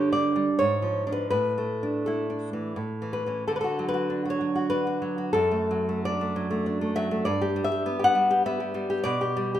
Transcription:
Already playing: G2 D3 D4 G4 C#5
0.12 D4 D5
0.36 G3
0.59 G#2 C#5
0.82 F3
1.07 F3 D4
1.12 B4
1.30 A2 B4
1.58 A3
1.83 D4
2.06 E4 A4
2.30 D4
2.53 E3
2.76 A2
3.02 E3
3.13 B4
3.26 E3 C#4
3.48 D3 A4
3.56 B4
3.61 F#4 A4
3.79 F#3
3.89 B4
3.94 F#4
4.10 D4
4.25 F#4
4.30 C#5
4.41 F#3
4.55 F#4
4.70 D4 B4
4.87 F#4
5.02 F#3
5.18 F#4
5.33 F#2 A4
5.51 A3
5.71 F#3
5.89 A3
6.05 D4 D5
6.21 A3
6.36 F#3
6.51 A3
6.66 D4
6.81 A3
6.96 F#3 E5
7.11 A3
7.25 G2 D5
7.41 G4
7.56 G3
7.64 E5
7.72 G4
7.86 B3
7.99 G4
8.04 F#5
8.15 G3
8.31 G4
8.46 B3 E5
8.60 G4
8.74 G3
8.90 G4
9.04 B2 D5
9.21 G4
9.37 G3
9.55 G4

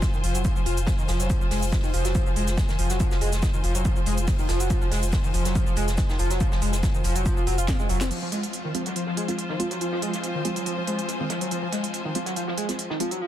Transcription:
Already playing: F4 C5 G#5
0.02 kick, snare, closed hi-hat, shaker
0.13 D#3, shaker
0.23 F1 F3, open hi-hat, shaker
0.35 F1 F#3, closed hi-hat, shaker
0.44 F3, kick, closed hi-hat, shaker
0.56 F1 F3, shaker
0.66 F1 F4, open hi-hat, shaker
0.77 F1, closed hi-hat, shaker
0.87 kick, snare, closed hi-hat, shaker
0.98 D#3, shaker
1.08 F1 F3, snare, open hi-hat, shaker
1.20 F1 F#3, snare, closed hi-hat, shaker
1.30 F3, kick, closed hi-hat, shaker
1.41 F1 F3, shaker
1.51 F1 G#3, snare, open hi-hat
1.63 F1, closed hi-hat, shaker
1.72 kick, snare, closed hi-hat, shaker
1.84 D#3, shaker
1.94 F1 F3, open hi-hat, shaker
2.05 F1 F#3, snare, closed hi-hat, shaker
2.15 F3, kick, closed hi-hat, shaker
2.26 F1 F3, shaker
2.36 F1 G#3, open hi-hat, shaker
2.47 F1, snare, closed hi-hat, shaker
2.57 kick, snare, closed hi-hat, shaker
2.69 D#3, snare, shaker
2.79 F1 F3, open hi-hat, shaker
2.90 F1 F#3, snare, closed hi-hat, shaker
3.00 F3, kick, closed hi-hat, shaker
3.11 F1 F3, snare, shaker
3.21 F1 G#3, open hi-hat, shaker
3.33 F1, snare, closed hi-hat, shaker
3.43 kick, snare, closed hi-hat, shaker
3.54 D#3, shaker
3.64 F1 F3, open hi-hat, shaker
3.75 F1 F#3, closed hi-hat, shaker
3.85 F3, kick, closed hi-hat, shaker
3.96 F1 F3, shaker
4.06 F1 G#3, open hi-hat, shaker
4.18 F1, closed hi-hat, shaker
4.27 kick, snare, closed hi-hat, open hi-hat, shaker
4.39 D#3, shaker
4.49 F1 F3, snare, open hi-hat, shaker
4.60 F1 F#3, closed hi-hat, shaker
4.70 F3, kick, closed hi-hat, shaker
4.81 F1 F3, shaker
4.91 F1 G#3, snare, open hi-hat
5.03 F1, closed hi-hat, shaker
5.12 kick, snare, closed hi-hat, shaker
5.24 D#3, shaker
5.34 F1 F3, open hi-hat, shaker
5.45 F1 F#3, snare, closed hi-hat, shaker
5.55 F3, kick, closed hi-hat, shaker
5.67 F1 F3, shaker
5.77 F1 G#3, open hi-hat, shaker
5.88 F1, snare, closed hi-hat, shaker
5.97 kick, snare, closed hi-hat, shaker
6.09 D#3, snare, shaker
6.19 F1 F3, open hi-hat, shaker
6.30 F1 F#3, snare, closed hi-hat, shaker
6.40 F3, kick, closed hi-hat, shaker
6.52 F1 F3, snare, shaker
6.62 F1 G#3, open hi-hat, shaker
6.73 F1, snare, closed hi-hat, shaker
6.83 kick, snare, closed hi-hat, shaker
6.94 D#3, shaker
7.04 F1 F3, open hi-hat, shaker
7.16 F1 F#3, closed hi-hat, shaker
7.26 F3, kick, closed hi-hat, shaker
7.37 F1 F3, shaker
7.47 F1 F#3, open hi-hat, shaker
7.58 F1 F4, closed hi-hat, shaker
7.68 kick, snare, closed hi-hat, shaker
7.79 G#3, shaker
7.89 F1 F#3, open hi-hat, shaker
8.01 F1 C4, snare, closed hi-hat, shaker
8.11 F3 C4 F4, closed hi-hat, crash, shaker
8.22 F3
8.32 G#3, snare, closed hi-hat, open hi-hat
8.43 closed hi-hat
8.53 C5, closed hi-hat, shaker
8.65 D#3
8.74 F3 G#3 C4 F4, closed hi-hat, shaker
8.86 F#3, snare, closed hi-hat
8.96 F3, closed hi-hat, shaker
9.07 F3, snare
9.17 G#3, closed hi-hat, shaker
9.28 G#3 C4 F4, snare, closed hi-hat
9.38 closed hi-hat, shaker
9.49 D#3 G#5, snare
9.59 F3 G#3 C4 F4, closed hi-hat, shaker
9.71 F#3, snare, closed hi-hat
9.81 F3, closed hi-hat, shaker
9.92 F3, snare
10.02 G#3, closed hi-hat, shaker
10.14 snare, closed hi-hat
10.24 closed hi-hat, shaker
10.35 D#3
10.45 F3 G#3 C4 F4, closed hi-hat, shaker
10.56 F#3, closed hi-hat
10.66 F3, closed hi-hat, shaker
10.78 F3
10.87 G#3, closed hi-hat, shaker
10.99 closed hi-hat
11.08 snare, closed hi-hat, open hi-hat
11.20 D#3 G#3 C4 F4
11.30 F3, snare, closed hi-hat, shaker
11.41 F#3, closed hi-hat
11.51 F3, closed hi-hat, shaker
11.62 F3
11.72 G#3, snare, closed hi-hat, open hi-hat
11.84 closed hi-hat
11.93 closed hi-hat, shaker
12.05 D#3
12.15 F3 G#3 C4 F4, closed hi-hat, shaker
12.26 F#3, snare, closed hi-hat
12.36 F3, closed hi-hat, shaker
12.48 F3, snare
12.57 G#3, closed hi-hat, shaker
12.69 G#3 C4 F4, snare, closed hi-hat
12.79 closed hi-hat, shaker
12.90 D#3, snare
13.00 F3 G#3 C4 F4, closed hi-hat
13.11 F#3, closed hi-hat
13.21 F3

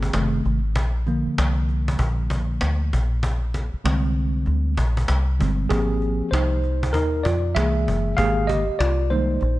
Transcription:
Already playing: G1 G#3 A#3 C4 G#4
0.03 cajon bass
0.13 F#1 C3 D#3 A3, cajon slap
0.45 G#1, cajon slap
0.76 A#1, cajon bass
1.07 D3 F3 A#3, cajon slap
1.26 muted fingered electric bass stroke
1.38 C2, cajon slap
1.69 cajon slap
1.88 cajon bass
1.99 A#1, cajon bass
2.30 cajon bass
2.61 D2, cajon slap
2.93 A#1, cajon bass
3.23 cajon bass
3.54 cajon bass, cajon slap
3.74 muted fingered electric bass stroke
3.84 C2 D3 G3 G#3 C4, cajon slap
4.04 cajon slap
4.46 D2, cajon slap
4.77 A#1, cajon bass
4.97 cajon bass
5.08 C2, cajon slap
5.40 G1 D3 G3 G#3 C4, cajon bass
5.69 G#1 F3 A#3 C4 G4 G#4, cajon bass
6.02 cajon slap
6.21 muted fingered electric bass stroke
6.31 C2 D#4 C5, cajon slap
6.64 cajon slap
6.83 cajon bass
6.93 D#2 D#4 A#4, cajon bass
7.24 F2 F4 D5, cajon bass
7.55 C2 E3 G#3 A#3 G#4 E5, cajon slap
7.88 F#1, cajon bass
8.17 G#1 D#3 G#3 A#3 G4 G#4 F5, cajon bass
8.47 G4 D#5, cajon bass, cajon slap
8.69 muted fingered electric bass stroke
8.79 C2 F4 D5, cajon slap
9.10 D#3 G3 G#3 A#3 D#4 C5, cajon slap
9.41 A#1, cajon slap

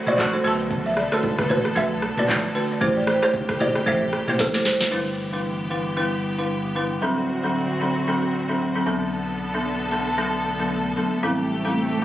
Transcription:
Already playing: D3 C4 F#4
0.07 F#3 A3 D4 F#4 C5 D5, mid tom, low bongo, shaker
0.18 F#3 F#4 A4, kick, clap, high bongo, low conga, shaker
0.33 A3 D4 F#4 A4 C5
0.44 B1 A3 B3 D4 F#4 A4 B4, open hi-hat, shaker
0.60 shaker
0.71 kick, low conga, shaker
0.86 E5
0.97 D5, cross-stick, shaker
1.12 A3 D4 F#4 A4 B4, cross-stick, shaker
1.23 kick, high bongo, shaker
1.39 B4, kick, cross-stick
1.49 A1 A3 D4 F#4 B4, mid tom, open hi-hat, low bongo, shaker
1.65 cross-stick, shaker
1.76 B1 A3 D4 F#4 A4 B4 E5, kick, low conga, shaker
2.02 cross-stick, shaker
2.17 A3 D4 F#4 B4 D5, mid tom, low bongo, shaker
2.28 kick, clap, high bongo, low conga, shaker
2.55 A3 D4 F#4 B4, open hi-hat, shaker
2.70 shaker
2.81 A1 C3 A3 E4 G4 C5, kick, low conga, shaker
2.97 D5
3.07 C5, cross-stick, shaker
3.22 A3 E4 G4 C5, cross-stick, shaker
3.34 kick, high bongo, shaker
3.49 A4, kick, cross-stick
3.60 G1 A3 E4 G4 C5 D5, mid tom, open hi-hat, high bongo, low bongo, shaker
3.75 cross-stick, shaker
3.86 A1 A3 E4 G4 A4 C5 E5, kick, low conga, shaker
4.13 cross-stick, shaker
4.28 A3 E4 G4 C5, mid tom, low bongo, shaker
4.39 A4, kick, snare, high bongo, low conga, shaker
4.54 A3 E4 G4 A4 C5, snare
4.65 F#1 C5, snare, open hi-hat, shaker
4.81 snare, high bongo, shaker
4.91 G1 E3 G3 B3 D4 E4 G4 B4
5.33 G3 D4 E4 B4
5.70 G3 D4 E4 B4
5.97 G3 D4 E4 B4
6.38 G3 D4 E4 B4
6.76 G3 D4 E4 B4
7.02 D1 D3 F#3 C4 D4 F#4 A4
7.44 F#3 C4 D4 A4
7.81 F#3 C4 D4 A4
8.07 F#3 C4 D4 A4
8.49 F#3 C4 D4 A4
8.75 F#3 C4 D4 A4
8.86 B1 D3 F#3 B3 D4 A4
9.13 swell
9.54 F#3 B3 D4 A4
9.91 F#3 B3 D4 A4
10.18 F#3 B3 D4 A4
10.59 F#3 B3 D4 A4
10.97 F#3 B3 D4 A4
11.23 A1 C3 G3 A3 C4 E4 G4 A4
11.65 G3 C4 E4 A4

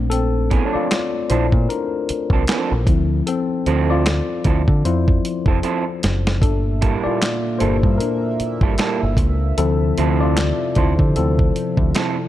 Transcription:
Already playing: A#1 A3 C4 D4
0.10 C4 A4, closed hi-hat
0.51 E3 B3 C#4 G#4, kick, closed hi-hat
0.65 F3 C4 D4 A4 C#5
0.73 F4 D5, muted picked electric bass stroke
0.91 snare, clap, closed hi-hat
1.29 A#1 F3 C4 D4 E4 A4 C5, closed hi-hat
1.52 A#2, kick
1.69 D4 A#4, closed hi-hat
2.09 muted picked electric bass stroke, closed hi-hat
2.30 C2 F3 C4 D4 A4, kick
2.47 F3 C4 D4 A4, snare, clap, closed hi-hat
2.72 A#1
2.87 D2 F3 C4 E4, kick, closed hi-hat
3.27 C4 A4, closed hi-hat
3.66 D2 F3 C4 E4 A4, closed hi-hat
3.90 F4 D5
4.06 snare, clap, closed hi-hat
4.44 D2 F3 C4 E4 A4, kick, closed hi-hat
4.68 D3, kick
4.85 F2 F3 C4 E4 C5, closed hi-hat
5.08 kick
5.25 closed hi-hat
5.46 F1 F3 C4 E4 A4, kick
5.63 F3 C4 E4 A4, closed hi-hat
6.03 F#1, snare, closed hi-hat
6.27 snare
6.41 G1 A#2 A#3 D4 A4 E5, kick, closed hi-hat
6.82 G3 A#3 E4 A4, kick, closed hi-hat
7.04 F4 D5, muted picked electric bass stroke
7.22 snare, clap, closed hi-hat
7.59 G1 G3 A#3 E4 A4 C5, closed hi-hat
7.83 G2, kick
7.98 A#4, closed hi-hat
8.02 D4
8.40 muted picked electric bass stroke, closed hi-hat
8.61 G1 G3 A#3 E4 A4, kick
8.78 G3 A#3 E4 A4, snare, clap, closed hi-hat
9.03 G1
9.17 C#2, kick, closed hi-hat
9.58 D2 C3 F3 C4 E4 A4, closed hi-hat
9.98 D2 F3 C4 E4 A4, closed hi-hat
10.20 F4 D5
10.37 snare, clap, closed hi-hat
10.75 D2 F3 C4 E4 A4 C5, kick, closed hi-hat
10.99 D3, kick
11.16 D2 F3 C4 E4 A4, closed hi-hat
11.39 kick
11.56 closed hi-hat
11.77 D2, kick
11.95 F3 C4 E4 A4, snare, clap, closed hi-hat

